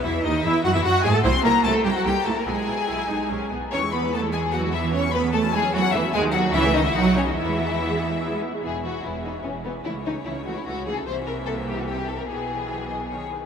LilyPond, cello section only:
\new Staff \with { instrumentName = "Cello section" } { \clef bass \time 3/4 \key e \major \tempo 4 = 148 e8 dis8 e8 fis16 e16 fis8 gis16 a16 | c'8 bes8 a8 g16 fis16 g8 a16 bes16 | gis2~ gis8 r8 | cis'8 b8 a8 gis8 fis8 e8 |
cis'8 b8 a8 gis8 fis8 e8 | gis8 fis8 e8 dis16 e16 fis8 cis16 dis16 | e2~ e8 r8 | e,4 e,4 e,4 |
cis4 cis4 cis4 | c2. | b,2~ b,8 r8 | }